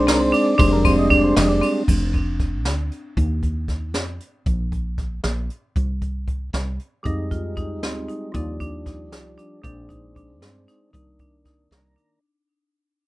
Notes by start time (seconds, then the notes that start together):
Already playing: G#3 C4 D4
0.07 C2 C4 A#4, snare, ride
0.20 C5
0.32 D4 D5, ride
0.57 F1 G3 G#3 D4 C5, kick, ride
0.72 A#4
0.85 C4 C5, kick, ride
0.98 D#5
1.10 D4 D5, kick, ride
1.24 C5
1.36 F1 D#5, snare, ride
1.50 D5
1.61 C4, ride
1.88 F1, kick, crash
2.14 kick, closed hi-hat
2.40 kick, snare, closed hi-hat
2.65 D2, snare, closed hi-hat
2.92 closed hi-hat
3.17 D#2, kick, closed hi-hat
3.43 kick, closed hi-hat
3.68 kick, snare, closed hi-hat
3.94 F2, snare, closed hi-hat
4.20 closed hi-hat
4.46 A#1, kick, closed hi-hat
4.72 kick, closed hi-hat
4.98 kick, snare, closed hi-hat
5.24 A#1, snare, closed hi-hat
5.50 closed hi-hat
5.76 C2, kick, closed hi-hat
6.01 kick, closed hi-hat
6.28 kick, closed hi-hat
6.53 C2, snare, closed hi-hat
6.79 closed hi-hat
7.03 F2 G3 G#3 D#4, kick, closed hi-hat
7.31 F4, kick, closed hi-hat
7.57 D#4, kick, closed hi-hat
7.82 D2 C4, snare, closed hi-hat
8.09 D#4, closed hi-hat
8.32 D#2 F3 G3 D4 D#4, kick, closed hi-hat
8.60 D4, kick, closed hi-hat
8.86 D#4, kick, snare, closed hi-hat
9.12 C2, snare, closed hi-hat
9.38 D4, closed hi-hat
9.62 A#1 G#3 C4 D4, kick, closed hi-hat
9.89 D#4, kick, closed hi-hat
10.16 D4, kick, closed hi-hat
10.41 G2 C4, snare, closed hi-hat
10.68 D#4, snare, closed hi-hat
10.91 C2 D#3 A#3 D4 D#4, kick, closed hi-hat
11.19 D4, kick, closed hi-hat
11.45 D#4, kick, snare, closed hi-hat
11.71 C2 A#5, snare, closed hi-hat
11.96 D4, closed hi-hat